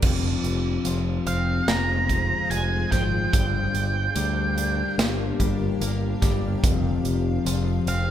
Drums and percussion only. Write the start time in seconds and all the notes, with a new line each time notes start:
0.02 kick, crash
0.44 closed hi-hat
0.85 closed hi-hat
1.27 closed hi-hat
1.68 snare, closed hi-hat
2.09 kick, closed hi-hat
2.51 closed hi-hat
2.92 kick, snare, closed hi-hat
3.33 kick, closed hi-hat
3.75 closed hi-hat
4.16 closed hi-hat
4.58 closed hi-hat
4.99 snare, closed hi-hat
5.40 kick, closed hi-hat
5.81 closed hi-hat
6.22 kick, snare, closed hi-hat
6.64 kick, closed hi-hat
7.05 closed hi-hat
7.46 closed hi-hat
7.87 closed hi-hat